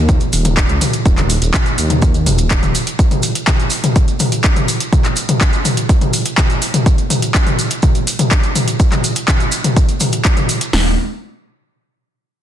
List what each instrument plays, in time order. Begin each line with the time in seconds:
Already playing: detuned saw bass D#2
0.09 kick, closed hi-hat, mid tom, maracas
0.20 closed hi-hat, maracas
0.33 detuned saw bass D#1, open hi-hat, maracas
0.45 closed hi-hat, mid tom, maracas
0.57 kick, clap, closed hi-hat, maracas
0.69 detuned saw bass C#2, closed hi-hat, maracas
0.81 open hi-hat, mid tom, maracas
0.93 closed hi-hat, maracas
1.05 detuned saw bass D#1, kick, closed hi-hat, maracas
1.18 clap, closed hi-hat, mid tom, maracas
1.30 open hi-hat, maracas
1.42 detuned saw bass D#1, closed hi-hat, maracas
1.54 kick, clap, closed hi-hat, mid tom, maracas
1.66 closed hi-hat, maracas
1.78 detuned saw bass D#2, open hi-hat, maracas
1.90 closed hi-hat, mid tom, maracas
2.02 kick, closed hi-hat, maracas
2.14 closed hi-hat, maracas
2.26 detuned saw bass D#1, open hi-hat, mid tom, maracas
2.38 closed hi-hat, maracas
2.50 kick, clap, closed hi-hat, maracas
2.63 detuned saw bass D#1, closed hi-hat, mid tom, maracas
2.75 open hi-hat, maracas
2.87 closed hi-hat, maracas
2.99 kick, closed hi-hat, maracas
3.11 closed hi-hat, mid tom, maracas
3.23 open hi-hat, maracas
3.35 closed hi-hat, maracas
3.47 kick, clap, closed hi-hat, mid tom, maracas
3.60 closed hi-hat, maracas
3.70 open hi-hat, maracas
3.84 closed hi-hat, mid tom, maracas
3.96 kick, closed hi-hat, maracas
4.08 closed hi-hat, maracas
4.20 open hi-hat, mid tom, maracas
4.32 closed hi-hat, maracas
4.44 kick, clap, closed hi-hat, maracas
4.56 closed hi-hat, mid tom, maracas
4.68 open hi-hat, maracas
4.80 closed hi-hat, maracas
4.93 kick, closed hi-hat, mid tom, maracas
5.04 clap, closed hi-hat, maracas
5.16 open hi-hat, maracas
5.29 closed hi-hat, mid tom, maracas
5.41 kick, clap, closed hi-hat, maracas
5.53 closed hi-hat, maracas
5.65 open hi-hat, mid tom, maracas
5.77 closed hi-hat, maracas
5.89 kick, closed hi-hat, maracas
6.01 closed hi-hat, mid tom, maracas
6.13 open hi-hat, maracas
6.25 closed hi-hat, maracas
6.38 kick, clap, closed hi-hat, mid tom, maracas
6.50 closed hi-hat, maracas
6.62 open hi-hat, maracas
6.74 closed hi-hat, mid tom, maracas
6.86 kick, closed hi-hat, maracas
6.98 closed hi-hat, maracas
7.10 open hi-hat, mid tom, maracas
7.22 closed hi-hat, maracas
7.34 kick, clap, closed hi-hat, maracas
7.47 closed hi-hat, mid tom, maracas
7.59 open hi-hat, maracas
7.70 closed hi-hat, maracas
7.82 kick, closed hi-hat, mid tom, maracas
7.95 closed hi-hat, maracas
8.07 open hi-hat, maracas
8.19 closed hi-hat, mid tom, maracas
8.31 kick, clap, closed hi-hat, maracas
8.43 closed hi-hat, maracas
8.55 open hi-hat, mid tom, maracas
8.68 closed hi-hat, maracas
8.80 kick, closed hi-hat, maracas
8.92 clap, closed hi-hat, mid tom, maracas
9.04 open hi-hat, maracas
9.15 closed hi-hat, maracas
9.28 kick, clap, closed hi-hat, mid tom, maracas
9.40 closed hi-hat, maracas
9.52 open hi-hat, maracas
9.64 closed hi-hat, mid tom, maracas
9.76 kick, closed hi-hat, maracas
9.89 closed hi-hat, maracas
10.00 open hi-hat, mid tom, maracas
10.12 closed hi-hat, maracas
10.25 kick, clap, closed hi-hat, maracas
10.37 closed hi-hat, mid tom, maracas
10.49 open hi-hat, maracas
10.61 closed hi-hat, maracas
10.73 detuned saw bass D#1, snare, open hi-hat